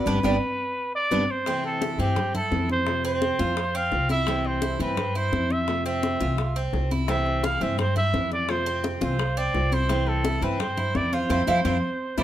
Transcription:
Already playing: B4
0.06 G1 G3 B3 D4 G4, low bongo, high conga
0.23 G1 G3 B3 D4 G4, low bongo, high conga
0.95 D5
1.11 G1 G3 B3 D4 G4, low bongo, high conga
1.31 C5
1.46 C3 E3 A3 C4 E4, high bongo, high conga
1.64 A4, high bongo, high conga
1.82 E4, high bongo, high conga
1.98 G2 E3 A3 C4 E4 G4, high bongo
2.16 muted nylon-string guitar stroke, high bongo, high conga, low conga
2.35 E4 A4, high conga, low conga
2.51 F2 E3 A3 C4 E4, high bongo, low bongo, high conga
2.69 C5, high bongo, high conga
2.86 C3 A3 C4 F4, high bongo, high conga
3.04 C4 C5, high bongo, high conga
3.22 high bongo, high conga
3.39 F2 E3 A3 C4 F4, high conga
3.57 muted nylon-string guitar stroke, high bongo, high conga
3.75 C4 F5, high conga
3.92 C2 A3 C4 F4, high bongo, low bongo, high conga
4.09 E4 E5, high bongo, high conga
4.27 C3 E3 A3 C4 E4, high bongo, high conga
4.45 C5, high bongo, high conga
4.62 E4, high bongo, high conga
4.79 G2 E3 A3 C4 E4 B4, high bongo, high conga
4.97 muted nylon-string guitar stroke, high bongo, high conga, low conga
5.15 E4 C5, high conga
5.32 F2 E3 A3 C4 E4, high bongo, low bongo, high conga
5.50 E5, high bongo, high conga
5.67 C3 A3 C4 F4, high bongo, high conga
5.86 C4 E5, high bongo, high conga
6.03 high bongo, high conga
6.20 C2 E3 A3 C4 F4, high bongo, high conga
6.38 muted nylon-string guitar stroke, high bongo, high conga
6.56 C4, high conga
6.73 C2 A3 C4 F4, high bongo, low bongo, high conga
6.91 E4, high bongo, high conga
7.08 C3 E3 A3 C4 E4 E5, high bongo
7.26 high bongo, high conga
7.43 E4 F5, high bongo, high conga
7.61 G2 E3 A3 C4 E4 E5, high bongo, high conga
7.78 C5, muted nylon-string guitar stroke, high bongo, high conga, low conga
7.96 E4 E5, high conga, low conga
8.13 F2 E3 A3 C4 E4, high bongo, low bongo, high conga
8.32 D5, high bongo, high conga
8.48 C3 A3 C4 F4 C5, high bongo, high conga
8.66 C4, high bongo, high conga
8.84 high bongo, high conga
9.01 C2 E3 A3 C4 F4 C5, high bongo, high conga
9.19 muted nylon-string guitar stroke, high bongo, high conga
9.37 C4 D5, high conga
9.54 C2 A3 C4 F4, high bongo, low bongo, high conga
9.72 E4 C5, high bongo, high conga
9.89 C3 E3 A3 C4 E4, high bongo, high conga
10.07 A4, high bongo, high conga
10.24 E4, high bongo, high conga
10.41 G2 E3 A3 C4 E4 B4, high bongo, high conga
10.60 C5, muted nylon-string guitar stroke, high bongo, high conga, low conga
10.77 E4, high conga, low conga
10.94 F2 E3 A3 C4 E4 D5, high bongo, low bongo, high conga
11.13 F4 C5, high bongo, high conga
11.29 F2 F3 A3 C4 E4 F4, low bongo, high conga
11.47 F2 F3 A3 C4 E4 F4, low bongo, high conga
11.65 F2 F3 A3 C4 E4 F4, low bongo, high conga
12.17 F2 F3 A3 C4 E4 F4 D5, low bongo, high conga

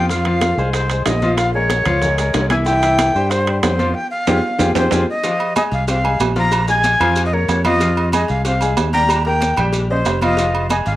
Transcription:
Already playing: F2
0.09 F3 F4 F5, high bongo, high conga, maracas
0.25 F3 F4 F5, high conga, high timbale
0.41 high bongo, high conga, high timbale, low timbale, maracas
0.57 C2 G#3 G#4 C5, maracas
0.73 C5, high bongo, high conga, high timbale, maracas
0.90 G#3 G#4 C5, high conga, high timbale, maracas
1.06 A#1 D#5, high bongo, low bongo, high conga, high timbale, low timbale, maracas
1.22 F3 F4 F5, high conga, maracas
1.37 F5, high bongo, high conga, high timbale, maracas
1.54 G#3 G#4 A#4 C#5, high bongo, high conga
1.70 high bongo, high conga, high timbale, low timbale, maracas
1.85 C#2 F3 F4 F5, high bongo, high conga, low conga, high timbale, maracas
2.02 G#3 G#4 A#4, high bongo, high conga, low conga, maracas
2.18 G#3 G#4 A#4, high bongo, high conga, high timbale, maracas
2.34 C2, high bongo, low bongo, high conga, high timbale, low timbale, maracas
2.50 E3 E4 E5 G#5, high conga, high timbale, maracas
2.65 E3 E4 E5 G5, high bongo, high conga, maracas
2.83 E3 E4 E5, high conga, high timbale, maracas
2.98 high bongo, high conga, high timbale, low timbale, maracas
3.15 G2 G3 G4 C5, maracas
3.31 C5, high bongo, high conga, high timbale, maracas
3.46 G3 G4 C5, high conga, high timbale
3.62 F2 C5, high bongo, low bongo, high conga, high timbale, low timbale, maracas
3.79 F3 F4 F5, high conga, maracas
3.94 G5
4.11 F5
4.27 F2 F4 G4 G#4, low bongo, high conga, high timbale, maracas
4.59 F2 F4 G4 G#4, low bongo, high conga, high timbale, maracas
4.75 F2 F4 G4 G#4 C5, low bongo, high conga, high timbale, maracas
4.91 F2 F4 G4 G#4, low bongo, high conga, high timbale, maracas
5.10 D#5
5.24 F3 F4 F5, cowbell, high conga, low agogo, maracas
5.40 high conga, low agogo
5.56 G#3 G#4 D#5 G#5, cowbell, high conga, low timbale, low agogo, maracas
5.72 C2 F5, cowbell, maracas
5.88 C4 C5 F5 C6, cowbell, high conga, low agogo, maracas
6.04 G#3 G#4 G#5, high conga, low agogo
6.20 A#1, cowbell, high conga, low timbale, low agogo, maracas
6.36 F3 F4 F5 A#5, cowbell, high conga, maracas
6.52 cowbell, high conga, low agogo, maracas
6.68 G#3 G#4 G#5, cowbell, high conga, maracas
6.84 cowbell, high conga, low timbale, low agogo, maracas
7.00 F2 F3 F4 F5, cowbell, high conga, low conga, low agogo, maracas
7.15 cowbell, high conga, low agogo, maracas
7.26 D#5
7.32 A#3 A#4 C#5 A#5, high conga
7.48 F2, cowbell, low timbale, low agogo, maracas
7.64 F3 F4 D#5 F5, cowbell, high conga, low agogo, maracas
7.80 F3 F4 F5, cowbell, high conga, low agogo, maracas
7.97 high conga, low agogo
8.12 G#3 G#4 D#5 G#5, cowbell, high conga, low timbale, low agogo, maracas
8.28 C2 F5, cowbell, maracas
8.45 C4 C5 F5 C6, cowbell, high conga, low agogo, maracas
8.61 G#3 G#4 G#5, high conga, low agogo, maracas
8.77 D#2, cowbell, high conga, low timbale, low agogo, maracas
8.93 G3 G4 G5 A#5, cowbell, high conga, maracas
9.09 cowbell, low agogo, maracas
9.25 A#3 A#4 G5 A#5, cowbell, high conga
9.40 cowbell, high conga, low timbale, low agogo, maracas
9.57 A#1 G3 G4 G5, cowbell, high conga, low conga, low agogo, maracas
9.73 cowbell, high conga, low agogo, maracas
9.90 C#4 C5 D#5, high conga
10.05 F1, cowbell, high conga, low timbale, low agogo, maracas
10.21 F3 F4 D#5 F5, cowbell, high conga, low agogo, maracas
10.37 F3 F4 F5, cowbell, high conga, low agogo, maracas
10.55 high conga, low agogo
10.70 G#3 G#4 D#5 G#5, cowbell, high conga, low timbale, low agogo, maracas
10.86 G#1 F5, cowbell, maracas

